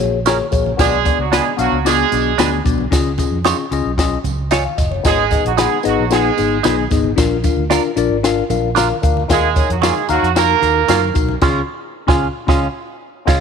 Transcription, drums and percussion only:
0.00 closed hi-hat medium
0.00 tambourine soft
0.00 muted conga soft
0.00 low conga medium
0.26 snare loud
0.26 closed hi-hat medium
0.26 tambourine loud
0.26 high conga medium
0.52 kick medium
0.52 closed hi-hat medium
0.52 tambourine soft
0.66 high conga medium
0.79 kick loud
0.79 snare loud
0.79 closed hi-hat medium
0.79 tambourine medium
0.79 muted conga medium
1.05 kick medium
1.05 closed hi-hat medium
1.05 tambourine medium
1.05 muted conga medium
1.33 snare loud
1.33 closed hi-hat loud
1.33 tambourine medium
1.33 high conga medium
1.58 closed hi-hat medium
1.58 tambourine medium
1.86 snare medium
1.86 closed hi-hat medium
1.86 tambourine medium
2.12 closed hi-hat medium
2.12 tambourine soft
2.12 muted conga soft
2.38 snare loud
2.38 closed hi-hat medium
2.38 tambourine loud
2.38 high conga medium
2.65 kick medium
2.65 closed hi-hat medium
2.65 tambourine soft
2.78 high conga medium
2.92 kick loud
2.92 snare loud
2.92 closed hi-hat medium
2.92 tambourine medium
2.92 muted conga soft
3.18 kick medium
3.18 closed hi-hat medium
3.18 tambourine medium
3.18 muted conga medium
3.44 snare loud
3.44 closed hi-hat loud
3.44 tambourine loud
3.44 high conga medium
3.72 closed hi-hat medium
3.72 tambourine medium
3.98 kick medium
3.98 snare loud
3.98 closed hi-hat medium
3.98 tambourine medium
4.24 closed hi-hat medium
4.24 tambourine soft
4.24 muted conga soft
4.24 low conga medium
4.51 snare loud
4.51 closed hi-hat medium
4.51 tambourine loud
4.51 high conga medium
4.78 kick medium
4.78 snare soft
4.78 closed hi-hat medium
4.78 tambourine soft
4.92 high conga medium
5.05 kick loud
5.05 snare medium
5.05 closed hi-hat medium
5.05 tambourine medium
5.05 muted conga soft
5.31 kick medium
5.31 closed hi-hat medium
5.31 tambourine medium
5.31 muted conga medium
5.46 closed hi-hat medium
5.58 snare loud
5.58 closed hi-hat loud
5.58 tambourine medium
5.58 high conga medium
5.83 closed hi-hat medium
5.83 tambourine medium
6.11 snare loud
6.11 closed hi-hat medium
6.11 tambourine medium
6.11 muted conga soft
6.38 closed hi-hat medium
6.38 tambourine soft
6.38 muted conga soft
6.64 snare loud
6.64 closed hi-hat medium
6.64 tambourine loud
6.64 high conga medium
6.91 kick loud
6.91 snare soft
6.91 closed hi-hat medium
6.91 tambourine soft
7.04 high conga medium
7.18 kick loud
7.18 snare loud
7.18 closed hi-hat medium
7.18 tambourine medium
7.18 muted conga soft
7.44 kick medium
7.44 closed hi-hat medium
7.44 tambourine medium
7.44 muted conga medium
7.70 snare loud
7.70 closed hi-hat loud
7.70 tambourine medium
7.70 high conga medium
7.97 closed hi-hat medium
7.97 tambourine medium
8.24 snare loud
8.24 closed hi-hat medium
8.24 tambourine loud
8.50 closed hi-hat medium
8.50 tambourine medium
8.50 muted conga soft
8.50 low conga medium
8.76 snare loud
8.76 closed hi-hat medium
8.76 tambourine loud
8.76 high conga medium
9.03 kick medium
9.03 closed hi-hat medium
9.03 tambourine soft
9.17 high conga medium
9.29 kick loud
9.29 snare loud
9.29 closed hi-hat medium
9.29 tambourine medium
9.29 muted conga medium
9.56 kick medium
9.56 closed hi-hat medium
9.56 tambourine medium
9.56 muted conga medium
9.70 closed hi-hat medium
9.82 snare loud
9.82 closed hi-hat loud
9.82 tambourine medium
9.82 high conga medium
10.09 closed hi-hat medium
10.09 tambourine medium
10.24 closed hi-hat medium
10.36 snare loud
10.36 closed hi-hat medium
10.36 tambourine medium
10.36 muted conga soft
10.62 closed hi-hat medium
10.62 tambourine medium
10.62 muted conga soft
10.88 snare loud
10.88 closed hi-hat medium
10.88 tambourine loud
10.88 high conga medium
11.15 kick medium
11.15 closed hi-hat medium
11.15 tambourine soft
11.29 high conga medium
11.41 kick loud
11.41 snare loud
11.41 crash medium
12.08 kick loud
12.08 snare loud
12.48 kick loud
12.48 snare loud
13.28 kick loud
13.28 snare loud
13.28 crash medium

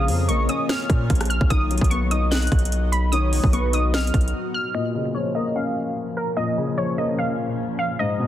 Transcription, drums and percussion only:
0.08 open hi-hat medium
0.29 closed hi-hat medium
0.49 closed hi-hat medium
0.69 snare loud
0.69 closed hi-hat medium
0.90 kick loud
0.90 closed hi-hat medium
1.10 kick loud
1.10 closed hi-hat medium
1.15 closed hi-hat medium
1.21 cross-stick loud
1.21 closed hi-hat medium
1.25 closed hi-hat medium
1.30 closed hi-hat medium
1.41 kick loud
1.50 kick loud
1.50 closed hi-hat medium
1.71 closed hi-hat medium
1.71 open hi-hat medium
1.78 kick medium
1.78 closed hi-hat medium
1.84 closed hi-hat medium
1.91 closed hi-hat medium
2.11 closed hi-hat medium
2.32 snare loud
2.32 closed hi-hat soft
2.37 closed hi-hat soft
2.42 closed hi-hat medium
2.47 closed hi-hat medium
2.52 kick medium
2.52 closed hi-hat soft
2.59 closed hi-hat medium
2.65 closed hi-hat medium
2.72 closed hi-hat medium
2.93 closed hi-hat medium
3.13 closed hi-hat medium
3.33 open hi-hat medium
3.44 kick medium
3.53 closed hi-hat medium
3.73 closed hi-hat medium
3.94 snare loud
3.94 closed hi-hat soft
4.00 closed hi-hat medium
4.07 closed hi-hat medium
4.14 kick loud
4.14 closed hi-hat medium
4.21 closed hi-hat medium
4.28 closed hi-hat medium

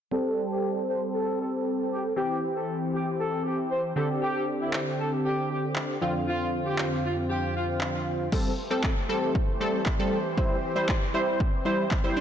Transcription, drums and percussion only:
4.73 clap loud
5.76 clap loud
6.78 clap loud
7.81 clap loud
8.32 kick loud
8.32 crash medium
8.84 kick loud
8.84 clap loud
9.35 kick loud
9.86 kick loud
9.86 clap loud
10.38 kick loud
10.89 kick loud
10.89 clap loud
11.40 kick loud
11.91 kick loud
11.91 clap loud

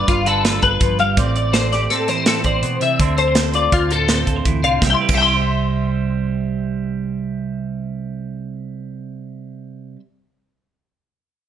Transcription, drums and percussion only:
0.08 kick loud
0.08 closed hi-hat medium
0.26 closed hi-hat medium
0.45 snare loud
0.45 closed hi-hat medium
0.62 kick medium
0.62 closed hi-hat medium
0.81 kick loud
0.81 closed hi-hat medium
0.99 closed hi-hat medium
1.17 kick loud
1.17 closed hi-hat medium
1.36 closed hi-hat medium
1.54 snare loud
1.54 closed hi-hat medium
1.73 snare soft
1.73 closed hi-hat soft
1.90 snare soft
1.90 closed hi-hat medium
2.08 snare soft
2.08 closed hi-hat medium
2.26 snare loud
2.26 closed hi-hat medium
2.44 kick medium
2.44 closed hi-hat medium
2.63 closed hi-hat medium
2.81 closed hi-hat medium
3.00 kick loud
3.00 closed hi-hat medium
3.18 closed hi-hat medium
3.35 snare loud
3.35 closed hi-hat medium
3.54 closed hi-hat medium
3.72 kick loud
3.72 closed hi-hat medium
3.91 closed hi-hat medium
4.08 snare loud
4.08 closed hi-hat medium
4.27 kick medium
4.27 closed hi-hat medium
4.45 kick medium
4.45 closed hi-hat medium
4.64 closed hi-hat medium
4.82 kick loud
4.82 snare medium
5.08 kick loud
5.08 crash medium

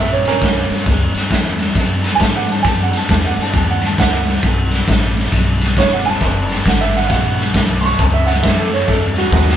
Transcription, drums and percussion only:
0.25 snare soft
0.25 ride medium
0.42 kick medium
0.42 snare loud
0.42 ride medium
0.70 snare soft
0.70 ride medium
0.86 kick medium
0.86 snare soft
0.86 ride medium
1.15 snare soft
1.15 ride medium
1.31 kick medium
1.31 snare loud
1.31 ride medium
1.59 snare soft
1.59 ride medium
1.75 kick medium
1.75 snare soft
1.75 ride medium
2.04 snare soft
2.04 ride medium
2.20 kick medium
2.20 snare loud
2.20 ride medium
2.49 snare soft
2.49 ride medium
2.65 kick medium
2.65 snare soft
2.65 ride medium
2.93 snare soft
2.93 ride medium
3.09 kick medium
3.09 snare loud
3.09 ride medium
3.37 snare soft
3.37 ride medium
3.54 kick medium
3.54 snare soft
3.54 ride medium
3.81 snare soft
3.81 ride medium
3.98 kick medium
3.98 snare loud
3.98 ride medium
4.26 snare soft
4.26 ride medium
4.43 kick medium
4.43 snare soft
4.43 ride medium
4.71 snare soft
4.71 ride medium
4.88 kick medium
4.88 snare loud
4.88 ride medium
5.17 snare soft
5.17 ride medium
5.32 kick medium
5.32 snare soft
5.32 ride medium
5.61 snare soft
5.61 ride medium
5.77 kick medium
5.77 snare loud
5.77 ride medium
6.05 snare soft
6.05 ride medium
6.21 kick medium
6.21 snare soft
6.21 ride medium
6.49 snare soft
6.49 ride medium
6.66 kick medium
6.66 snare loud
6.66 ride medium
6.94 snare soft
6.94 ride medium
7.10 kick medium
7.10 snare soft
7.10 ride medium
7.38 snare soft
7.38 ride medium
7.54 kick medium
7.54 snare loud
7.54 ride medium
7.83 snare soft
7.83 ride medium
7.99 kick medium
7.99 snare soft
7.99 ride medium
8.28 snare soft
8.28 ride medium
8.44 kick medium
8.44 snare loud
8.44 ride medium
8.71 snare soft
8.71 ride medium
8.88 kick medium
8.88 snare soft
8.88 ride medium
9.15 snare soft
9.15 ride medium
9.33 kick medium
9.33 snare medium
9.49 snare medium

